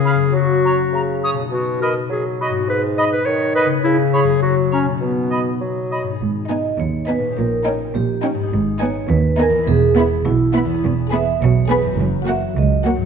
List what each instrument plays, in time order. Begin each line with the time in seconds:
Already playing: bassoon C#3, harp C#3 G#3 B3 C#4 F4, clarinet G#4
0.05 cor anglais F5, flute B5
0.15 harp F#2
0.19 harp A#3
0.24 harp C#4
0.28 harp F#4
0.33 bassoon F#3, clarinet F#4
0.65 cor anglais C#5, flute A#5
0.93 bassoon C#3, flute A#5
1.24 cor anglais C#5, flute D#6
1.33 harp B2
1.38 harp B3
1.42 harp D#4
1.46 harp F#4
1.51 bassoon B2, clarinet F#4
1.82 clarinet A#4, cor anglais D#5, flute B5
2.10 bassoon F#3, clarinet G#4
2.40 clarinet F#4, cor anglais D#5, flute B5
2.49 harp G#2
2.54 harp B3
2.58 harp D#4
2.63 harp G#4
2.68 bassoon G#2, clarinet B4
2.98 clarinet D#5, cor anglais D#5, flute B5
3.12 clarinet B4
3.26 bassoon D#3, clarinet C#5
3.55 clarinet B4, cor anglais D#5, flute B5
3.66 harp C#3
3.70 harp B3
3.74 harp C#4
3.79 harp G#4
3.84 bassoon C#3, clarinet E4
4.13 clarinet G#4, cor anglais C#5, flute B5
4.23 harp F#2
4.28 harp A#3
4.33 harp C#4
4.37 harp F#4
4.42 bassoon F#3, clarinet F#4
4.72 clarinet C#4, cor anglais C#5, flute A#5
4.83 harp B2
4.88 harp B3
4.92 harp D#4
4.97 bassoon B2, harp F#4
5.02 clarinet B3
5.31 cor anglais D#5, flute B5
5.61 bassoon F#3
5.92 cor anglais D#5, flute B5
6.02 harp G#2
6.06 harp B3
6.11 harp D#4
6.16 harp G#4
6.21 double bass section G#1, cello section G#2
6.49 viola section B3, violin section D#4 G#5, vibraphone D#5
6.79 cello section D#2, double bass section D#2, vibraphone C#5
7.07 viola section B3, violin section D#4 G#5, vibraphone B4
7.19 harp A#2
7.23 harp C#4
7.28 harp D#4
7.32 harp G4
7.37 double bass section A#1, cello section A#2, vibraphone A#4
7.66 viola section C#4, violin section D#4 G5
7.95 double bass section A#1, cello section A#2, vibraphone G4
8.23 viola section C#4, violin section D#4 G5
8.34 harp G#2
8.39 harp B3
8.44 harp D#4
8.48 harp G#4
8.53 double bass section G#1, cello section G#2
8.81 viola section B3, violin section D#4 G#5, vibraphone C#5
9.09 cello section D#2, double bass section D#2, vibraphone B4
9.39 viola section B3, violin section D#4 G#5, vibraphone A#4
9.49 harp E2
9.54 harp B3
9.58 harp E4
9.63 cello section E2, harp B4
9.67 double bass section E1, vibraphone G#4
9.97 viola section B3, violin section E4 B5
10.25 double bass section B1, cello section B2, vibraphone E4
10.54 viola section B3, violin section E4 B5
10.65 harp E2
10.70 harp B3
10.74 harp G#4
10.78 harp B4
10.84 double bass section E1, cello section E2
11.12 viola section B3, violin section G#4 B5, vibraphone E5
11.42 double bass section B1, cello section B2, vibraphone C#5
11.69 viola section B3, violin section G#4 B5, vibraphone B4
11.81 harp F#2
11.86 harp F#3
11.91 harp F#4
11.95 harp A#4
11.99 double bass section F#1, cello section F#2
12.27 viola section A#3, violin section F#4 F#5, vibraphone E5
12.57 double bass section C#2, cello section C#2, vibraphone D#5
12.85 viola section A#3, violin section F#4 F#5, vibraphone C#5
12.96 harp G#2
13.01 harp F#3